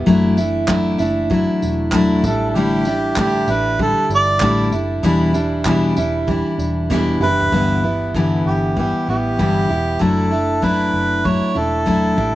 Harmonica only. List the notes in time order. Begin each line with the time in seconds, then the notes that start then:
2.26 A4
2.50 A4
2.56 G4
3.19 G4
3.50 B4
3.82 A4
4.15 D5
7.23 B4
8.46 G4
8.79 G4
9.10 G4
10.02 A4
10.64 B4
11.26 C#5
11.58 A4